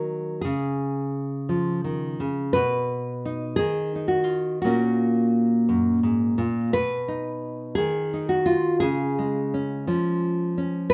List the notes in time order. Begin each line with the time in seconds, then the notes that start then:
Already playing: D#3 F#3 B3 D#4 A#4
0.41 C#3 G#4
1.49 F3
1.84 D#3
2.20 C#3
2.53 B2 B4
3.25 D#4
3.56 D#3 G#4
3.95 D#4
4.08 F#4
4.24 F4
4.62 A#2 A#3 F#4
4.66 C#4
5.69 F#2
6.03 G#2
6.38 A#2
6.73 B2 B4
7.08 D#4
7.75 D#3 G#4
8.13 D#4
8.29 F#4
8.46 F4
8.80 C#3 G#4
9.19 G#3
9.54 C#4
9.87 F3 C#4
10.58 C#4
10.90 B4